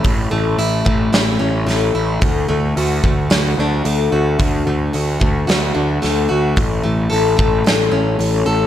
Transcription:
<<
  \new Staff \with { instrumentName = "Steel-string acoustic guitar" } { \time 4/4 \key a \major \tempo 4 = 110 <a, a cis' e'>8 a8 e'8 a8 e'8 cis'8 a8 e'8 | d8 a8 fis'8 a8 fis'8 d'8 a8 fis'8 | d8 a8 fis'8 a8 fis'8 d'8 a8 fis'8 | a,8 a8 a'8 a8 a'8 cis'8 a8 a'8 | }
  \new Staff \with { instrumentName = "Picked electric bass" } { \clef bass \time 4/4 \key a \major a,,8 a,,8 a,,8 a,,8 a,,8 a,,8 a,,8 a,,8 | d,8 d,8 d,8 d,8 d,8 d,8 d,8 d,8 | d,8 d,8 d,8 d,8 d,8 d,8 d,8 d,8 | a,,8 a,,8 a,,8 a,,8 a,,8 a,,8 a,,8 a,,8 | }
  \new DrumStaff \with { instrumentName = "Drums" } \drummode { \time 4/4 <hho bd>4 hho8 bd8 <hho sn>4 <hho sn>4 | <hho bd>4 hho8 bd8 <hho sn>4 hho4 | <hho bd>4 hho8 bd8 <hho sn>4 <hho sn>4 | <hho bd>4 hho8 bd8 <hho sn>4 hho4 | }
>>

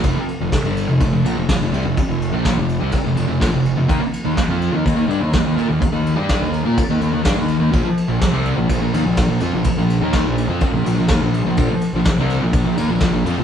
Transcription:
<<
  \new Staff \with { instrumentName = "Distorted electric guitar" } { \clef bass \time 4/4 \key bes \major \tempo 4 = 125 <f, c>16 r8 <f, c>16 r16 <g, d g>8 <f, c>16 <f, c>16 <f, c>16 <bes, f>16 <f, c>16 <f, c>16 <f, c>16 <c g>16 <f, c>16 | r16 <f, c>8 <bes, f bes>8 <f, c>8 <c g>16 r16 <f, c>16 <f, c>16 <f, c>16 <bes, f>16 <f, c>8 <f, c>16 | <ees bes>16 r8 <ees bes>16 r16 <f c' f'>8 <ees bes>16 <ees bes>16 <ees bes>16 <g d'>16 <ees bes>16 <ees bes>16 <ees bes>16 <bes f'>16 <ees bes>16 | r16 <ees bes>8 <g d' g'>8 <ees bes>8 <bes f'>16 r16 <ees bes>16 <ees bes>16 <ees bes>16 <g d'>16 <ees bes>8 <ees bes>16 |
<bes, f>16 r8 <bes, f>16 r16 <c g c'>8 <bes, f>16 <bes, f>16 <bes, f>16 <ees bes>16 <bes, f>16 <bes, f>16 <bes, f>16 <f c'>16 <bes, f>16 | r16 <bes, f>8 <ees bes ees'>8 <bes, f>8 <f c'>16 r16 <bes, f>16 <bes, f>16 <bes, f>16 <ees bes>16 <bes, f>8 <bes, f>16 | <bes, f>16 r8 <bes, f>16 r16 <c g c'>8 <bes, f>16 <bes, f>16 <bes, f>16 <ees bes>16 <bes, f>16 <bes, f>16 <bes, f>16 <f c'>16 <bes, f>16 | }
  \new Staff \with { instrumentName = "Picked electric bass" } { \clef bass \time 4/4 \key bes \major f,,16 r8 f,,16 r16 g,,8 f,,16 f,,16 f,,16 bes,,16 f,,16 f,,16 f,,16 c,16 f,,16 | r16 f,,8 bes,,8 f,,8 c,16 r16 f,,16 f,,16 f,,16 bes,,16 f,,8 f,,16 | ees,16 r8 ees,16 r16 f,8 ees,16 ees,16 ees,16 g,16 ees,16 ees,16 ees,16 bes,16 ees,16 | r16 ees,8 g,8 ees,8 bes,16 r16 ees,16 ees,16 ees,16 g,16 ees,8 ees,16 |
bes,,16 r8 bes,,16 r16 c,8 bes,,16 bes,,16 bes,,16 ees,16 bes,,16 bes,,16 bes,,16 f,16 bes,,16 | r16 bes,,8 ees,8 bes,,8 f,16 r16 bes,,16 bes,,16 bes,,16 ees,16 bes,,8 bes,,16 | bes,,16 r8 bes,,16 r16 c,8 bes,,16 bes,,16 bes,,16 ees,16 bes,,16 bes,,16 bes,,16 f,16 bes,,16 | }
  \new DrumStaff \with { instrumentName = "Drums" } \drummode { \time 4/4 <bd cymr>8 cymr8 <bd cymr sn>8 cymr8 <bd cymr>8 cymr8 <bd cymr sn>8 cymr8 | <bd cymr>8 cymr8 <bd cymr sn>8 cymr8 <bd cymr>8 cymr8 <bd cymr sn>8 cymr8 | <bd cymr>8 cymr8 <bd cymr sn>8 cymr8 <bd cymr>8 cymr8 <bd cymr sn>8 cymr8 | <bd cymr>8 cymr8 <bd cymr sn>8 cymr8 <bd cymr>8 cymr8 <bd cymr sn>8 cymr8 |
<cymc bd>8 cymr8 <bd cymr sn>8 cymr8 <bd cymr>8 cymr8 <bd cymr sn>8 cymr8 | <bd cymr>8 cymr8 <bd cymr sn>8 cymr8 <bd cymr>8 cymr8 <bd cymr sn>8 cymr8 | <bd cymr>8 cymr8 <bd cymr sn>8 cymr8 <bd cymr>8 cymr8 <bd cymr sn>8 cymr8 | }
>>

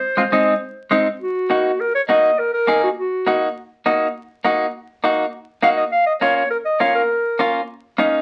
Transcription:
<<
  \new Staff \with { instrumentName = "Clarinet" } { \time 4/4 \key ees \dorian \tempo 4 = 204 c''2. r4 | ges'2 bes'8 des''8 ees''4 | bes'8 bes'4 ges'8 ges'4. r8 | r1 |
r2. f''8 ees''8 | f''8 ees''8 des''8 des''8 bes'8 ees''8 des''8 bes'8~ | bes'4. r2 r8 | }
  \new Staff \with { instrumentName = "Clean electric guitar" } { \time 4/4 \key ees \dorian r8 <aes c' f'>8 <aes c' ees'>8 r4. <aes c' ees'>8 r8 | r4 <bes ees' ges'>8 r4. <bes ees' ges'>8 r8 | r4 <bes ees' aes'>8 r4. <bes ees' ges'>8 r8 | r4 <bes ees' ges'>8 r4. <bes ees' ges'>8 r8 |
r4 <bes ees' ges'>8 r4. <bes ees' ges'>8 r8 | r4 <bes des' f'>8 r4. <bes des' f'>8 r8 | r4 <bes des' f'>8 r4. <bes des' ees'>8 r8 | }
>>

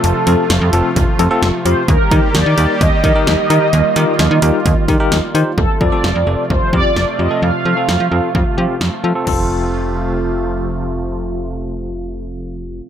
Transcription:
<<
  \new Staff \with { instrumentName = "Analog polysynth" } { \time 4/4 \key f \mixolydian \tempo 4 = 130 a'4. r2 c''8 | bes'4 d''4 ees''2~ | ees''2. r4 | a'8 d''4. c''8 d''4 ees''8 |
f''2. r4 | r1 | r1 | }
  \new Staff \with { instrumentName = "Tine electric piano" } { \time 4/4 \key f \mixolydian r8 <c' f' a'>16 r8. <c' f' a'>16 r8. <c' f' a'>16 <c' f' a'>16 r8 <c' f' g'>16 r16 | r8 <ees' g' bes'>16 r8. <ees' g' bes'>16 r8. <ees' g' bes'>16 <ees' g' bes'>16 r8 <ees' g' bes'>16 r16 | r8 <ees' g' bes'>16 r8. <ees' g' bes'>16 r8. <ees' g' bes'>16 <ees' g' bes'>16 r8 <ees' g' c''>16 r16 | r8 <c' f' a'>16 <c' f' a'>16 r8 <c' f' a'>16 r8. <c' f' g'>16 r8. <c' f' g'>16 <c' f' a'>16 |
r8 <c' f' a'>16 <c' f' a'>16 r8 <c' f' a'>16 r8. <c' f' g'>16 r8. <c' f' a'>16 <c' f' a'>16 | <c' f' a'>1~ | <c' f' a'>1 | }
  \new Staff \with { instrumentName = "Analog synth pad" } { \time 4/4 \key f \mixolydian << { f'1 | g'1 | f'1 | f'1~ |
f'1 | <c f a f'>1~ | <c f a f'>1 | } \\ { <c f a>1 | <ees g bes>1~ | <ees g bes>1 | <c f a>1~ |
<c f a>1 | r1 | r1 | } >> }
  \new Staff \with { instrumentName = "FM bass" } { \clef bass \time 4/4 \key f \mixolydian f,,16 r16 f,16 r16 f,,16 f,16 f,,16 r16 f,,16 r16 f,16 r16 f,,16 r16 f,16 r16 | ees,16 r16 ees16 r16 ees,16 ees16 ees,16 r16 ees,16 r16 ees16 r16 ees,16 r16 ees16 r16 | ees,16 r16 ees16 r16 ees,16 ees16 ees,16 r16 ees,16 r16 ees16 r16 ees,16 r16 ees16 r16 | f,,16 r16 f,16 r16 f,,16 f,16 f,,16 r16 f,,16 r16 f,16 r16 f,,16 r16 f,16 r16 |
f,16 r16 f16 r16 f,16 f16 f,16 r16 f,16 r16 f16 r16 f,16 r16 f16 r16 | f,,1~ | f,,1 | }
  \new DrumStaff \with { instrumentName = "Drums" } \drummode { \time 4/4 hh8 hh8 <hh sn>8 hh8 <hh bd>8 hh8 <hh sn>8 hh8 | <hh bd>8 <hh bd>8 <hh sn>8 hh8 <hh bd>8 <hh bd>8 <hh sn>8 hh8 | hh8 hh8 <hh sn>8 hh8 <hh bd>8 <hh bd>8 <hh sn>8 hh8 | bd8 bd8 sn4 bd8 bd8 sn4 |
r4 sn4 bd4 sn4 | <cymc bd>4 r4 r4 r4 | r4 r4 r4 r4 | }
>>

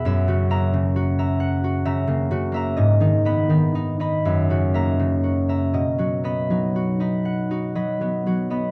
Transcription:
<<
  \new Staff \with { instrumentName = "Harp" } { \time 6/8 \key b \major \tempo 4. = 40 << { r8 ais''2~ ais''8 | r8 b''4 r8 ais''4 | r8 b''2~ b''8 | } \\ { e''16 fis'16 e''16 cis16 fis'16 <e'' ais''>16 fis''16 fis'16 <e'' ais''>16 cis16 fis'16 <e'' ais''>16 | dis''16 dis'16 dis''16 dis16 dis'16 <dis'' b''>16 e''16 fis'16 e''16 cis16 fis'16 <e'' ais''>16 | dis''16 fis'16 dis''16 fis16 fis'16 <dis'' b''>16 fis''16 fis'16 <dis'' b''>16 fis16 fis'16 <dis'' b''>16 | } >> }
  \new Staff \with { instrumentName = "Harp" } { \time 6/8 \key b \major fis,16 cis16 ais4. cis16 ais16 cis16 ais16 | gis,16 dis16 b16 dis'8 dis'16 fis,16 cis16 ais4 | b,16 fis16 b16 dis'8 dis'8 dis'16 fis16 b16 fis16 b16 | }
>>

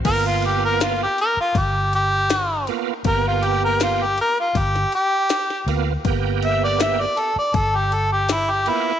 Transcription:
<<
  \new Staff \with { instrumentName = "Harmonica" } { \time 4/4 \key c \major \tempo 4 = 80 ais'16 f'16 g'16 ais'16 f'16 g'16 ais'16 f'16 g'8 g'4 r8 | ais'16 f'16 g'16 ais'16 f'16 g'16 ais'16 f'16 g'8 g'4 r8 | r8 e''16 d''16 e''16 d''16 a'16 d''16 a'16 g'16 a'16 g'16 e'16 g'16 e'8 | }
  \new Staff \with { instrumentName = "Tonewheel organ" } { \time 4/4 \key c \major <ais b f'>4. r2 <ais b f'>8 | <ais b g'>4. r2 <ais b f'>8 | <ais b g'>4. r2 <ais b f'>8 | }
  \new Staff \with { instrumentName = "Fingered electric bass" } { \clef bass \time 4/4 \key c \major g,,4.~ g,,16 r16 g,,2 | g,,2 g,,8 r4 d,8 | g,,4.~ g,,16 r16 g,,2 | }
  \new DrumStaff \with { instrumentName = "Drums" } \drummode { \time 4/4 <cymc bd cymr>8 cymr8 <cymr sn>8 cymr8 <bd cymr>8 cymr8 <cymr sn>8 cymr8 | <bd cymr>8 cymr8 <cymr sn>8 cymr8 <bd cymr>16 sn16 cymr8 <cymr sn>16 sn16 cymr8 | <bd cymr>8 cymr8 <cymr sn>8 cymr8 <bd cymr>8 cymr8 <cymr sn>8 cymr8 | }
>>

